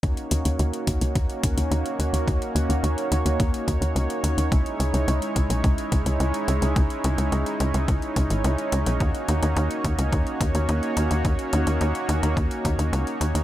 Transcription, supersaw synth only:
0.03 A#3 C#4 D#4 F#4 C#5
4.52 G#3 C#4 E4
9.00 A#3 F#4 C#5

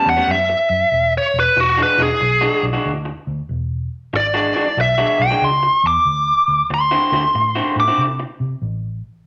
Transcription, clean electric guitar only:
0.17 A2 G3 B3 C#4
0.49 muted clean electric guitar stroke
1.56 muted clean electric guitar stroke
1.77 E3 G#3 D4 F#4
1.98 E3 G#3 D4 F#4
2.10 muted clean electric guitar stroke
2.20 muted clean electric guitar stroke
2.41 E3 G#3 D4 F#4
2.73 E3 G#3 D4 F#4
3.05 muted clean electric guitar stroke
4.13 muted clean electric guitar stroke
4.34 E3 G#3 D4 F#4
4.55 E3 G#3 D4 F#4
4.66 muted clean electric guitar stroke
4.78 muted clean electric guitar stroke
4.98 E3 G#3 D4 F#4
5.30 E3 G#3 D4 F#4
5.63 muted clean electric guitar stroke
6.70 muted clean electric guitar stroke
6.91 D3 C4 E4 F#4
7.12 D3 C4 E4 F#4
7.24 muted clean electric guitar stroke
7.35 muted clean electric guitar stroke
7.55 D3 C4 E4 F#4
7.88 D3 C4 E4 F#4
8.20 muted clean electric guitar stroke

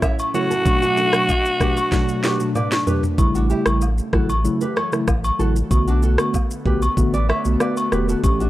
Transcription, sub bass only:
3.18 A1
3.66 A1
4.13 A1
5.08 A1
5.39 A1
5.71 B1
6.65 B1
6.97 A1
7.45 B1
7.92 E1
8.24 A1

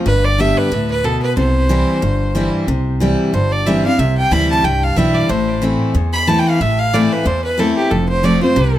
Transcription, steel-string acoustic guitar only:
0.06 G2
0.38 D3 G3 B3 G4
0.72 A2
1.04 B2
1.37 C3
1.69 E3 G3 C4 E4
2.02 G2
2.35 E3 G3 C4 E4
2.68 C3
3.00 E3 G3 C4 E4
3.34 G2
3.67 E3 G3 C4 E4
3.85 C4 E4
3.99 C3
4.31 E3 G3 C4 E4
4.65 G2
4.96 E3 G3 C4 E4
5.29 A2
5.62 E3 A3 C4 E4
5.95 E2
6.27 E3 A3 C4 E4
6.61 A2
6.93 E3 A3 C4 E4
7.26 E2
7.58 E3 A3 C4 E4
7.91 F2
8.23 F3 A3 C4 F4
8.41 C4 F4
8.56 C3

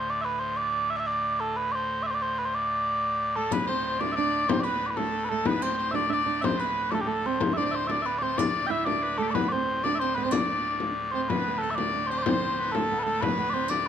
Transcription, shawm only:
3.35 A4
3.53 B4
3.67 C5
3.99 D5
4.16 D5
4.50 C5
4.63 B4
4.96 A4
5.31 A4
5.46 B4
5.62 C5
5.78 C5
5.94 D5
6.12 D5
6.44 C5
6.58 B4
6.91 A4
7.06 A4
7.57 C5 D5
7.66 D5
7.72 C5
7.88 D5
8.17 D5
8.22 C5
8.37 D5
8.68 E5
8.87 D5
9.03 B4
9.18 A4
9.22 G4
9.28 A4
9.34 B4
9.84 D5
10.00 C5
10.16 B4
10.24 C5
10.31 D5
11.14 C5
11.30 B4
11.62 A4
11.78 D5
12.10 C5
12.27 C5
12.59 B4
12.75 A4
13.06 A4
13.24 B4
13.70 D5

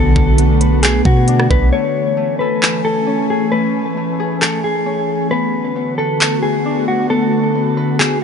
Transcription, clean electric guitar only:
Already playing: A4
0.83 G#4
1.06 F#4
1.50 B4
1.73 C#5
2.39 B4
2.85 A4
3.30 G#4
3.52 B4
4.42 A4
4.64 G#4
5.31 B4
5.98 A4
6.43 G#4
6.88 F#4
7.10 A4
7.99 G#4

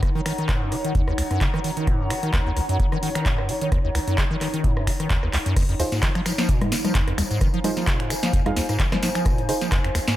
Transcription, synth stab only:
5.80 D#4 F4 G#4 C5
7.64 D#4 F4 G#4 C5
8.46 D#4 F4 G#4 F5
9.49 D#4 F4 G#4 C5

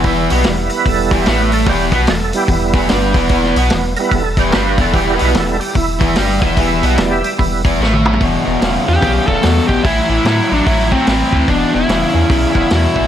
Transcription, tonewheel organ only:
Already playing: E4
0.30 G3 B3 E4
0.70 A#4
0.74 B4
0.88 A4
1.15 G4
1.26 G3 B3 E4 A#4
1.30 B4
1.54 A4
1.69 G4
1.92 A#4 B4
2.10 A4
2.34 G3 B3 E4 G4
2.52 G3 E4
3.97 G3 B3 E4 A#4
4.01 B4
4.15 A4
4.39 G4
4.50 A#4
4.55 B4
4.81 A4
4.93 G3 B3 E4 G4
5.14 A#4
5.19 B4
5.35 A4
5.60 G4
5.77 E4
6.42 D#5
6.47 E5
6.59 G3 B3 E4
6.88 E5
7.01 D5
7.11 G4 E5
7.38 G3 B3 E4

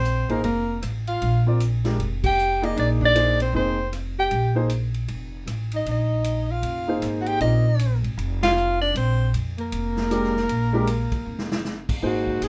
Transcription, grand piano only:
0.29 A#3 D#4 G#4 C5
1.46 C4 F4 A#4 D5
1.84 G#3 D4 G4 A#4
2.62 A#3 D#4 G#4 D5
3.15 A#3 D#4 G#4 C5
3.54 A#3 D#4 G#4 C5
4.55 A#3 D#4 G#4 C5
6.87 A#3 D#4 G#4 C5
7.40 C4 F4 A#4 D5
10.10 G#3 D4 G4 A#4
10.73 G#3 D4 G4 A#4
12.02 A#3 D#4 G#4 C5

